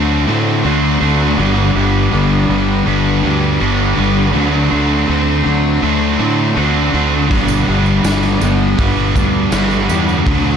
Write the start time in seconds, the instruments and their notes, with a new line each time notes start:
Already playing: fingered electric bass D2, overdriven electric guitar D3 A3 C4 D4 F#4 C5, clean electric guitar F#3 A3 C4
0.28 fingered electric bass A2, overdriven electric guitar D3 A3 D4, clean electric guitar C4
0.64 fingered electric bass D2, overdriven electric guitar D3 A3 C4 D4 F#4 C5, clean electric guitar F#4
1.01 fingered electric bass D2, overdriven electric guitar D3 A3 C4 D4 F#4 C5, clean electric guitar A3
1.38 fingered electric bass G1, overdriven electric guitar G2 D3 G3 B3 D4 B4, clean electric guitar B3
1.75 fingered electric bass G1, overdriven electric guitar G2 D3 G3 B3 D4 B4, clean electric guitar B3
2.12 fingered electric bass G1, overdriven electric guitar G2 D3 G3, clean electric guitar D4
2.49 fingered electric bass G1, overdriven electric guitar G2 D3 G3, clean electric guitar B3
2.85 fingered electric bass G1, overdriven electric guitar G2 D3 G3 B3 D4 B4, clean electric guitar B3
3.22 fingered electric bass D2, overdriven electric guitar G2 D3 G3, clean electric guitar D4
3.60 fingered electric bass G1, overdriven electric guitar G2 D3 G3 B3 D4 B4, clean electric guitar F#4
3.97 fingered electric bass G1, overdriven electric guitar G2 D3 G3 B3 D4 B4, clean electric guitar B3
4.33 fingered electric bass D2, overdriven electric guitar D3 A3 C4 D4 F#4 C5, clean electric guitar F#3
4.71 fingered electric bass D2, overdriven electric guitar D3 A3 C4 D4 F#4 C5, clean electric guitar A3
5.08 fingered electric bass D2, overdriven electric guitar D3 A3 D4, clean electric guitar C4
5.44 fingered electric bass D2, overdriven electric guitar D3 A3 D4, clean electric guitar F#3
5.81 fingered electric bass D2, overdriven electric guitar D3 A3 C4 D4 F#4 C5, clean electric guitar A3
6.19 fingered electric bass A2, overdriven electric guitar D3 A3 D4, clean electric guitar C4
6.56 fingered electric bass D2, overdriven electric guitar D3 A3 C4 D4 F#4 C5, clean electric guitar F#4
6.93 fingered electric bass D2, overdriven electric guitar D3 A3 C4 D4 F#4 C5, clean electric guitar A3
7.30 fingered electric bass G1, overdriven electric guitar G2 D3 G3 B3 D4 B4, clean electric guitar B3, kick, open hi-hat
7.48 tambourine
7.67 fingered electric bass G1, overdriven electric guitar G2 D3 G3 B3 D4 B4, clean electric guitar B3
7.86 tambourine
8.04 fingered electric bass G1, overdriven electric guitar G2 D3 G3, clean electric guitar D4, snare, open hi-hat, tambourine
8.23 tambourine
8.41 fingered electric bass G1, overdriven electric guitar G2 D3 G3, clean electric guitar B3, tambourine
8.78 fingered electric bass G1, overdriven electric guitar G2 D3 G3 B3 D4 B4, clean electric guitar B3, kick, open hi-hat, tambourine
9.15 fingered electric bass D2, overdriven electric guitar G2 D3 G3, clean electric guitar D4, kick, tambourine
9.51 fingered electric bass G1, overdriven electric guitar G2 D3 G3 B3 D4 B4, clean electric guitar F#4, snare, open hi-hat, tambourine
9.71 tambourine
9.89 fingered electric bass E2, overdriven electric guitar G2 D3 G3 B3 D4 B4, clean electric guitar B3, tambourine
10.09 tambourine
10.26 fingered electric bass D2, overdriven electric guitar D3 A3 C4 D4 F#4 C5, clean electric guitar F#3, kick, open hi-hat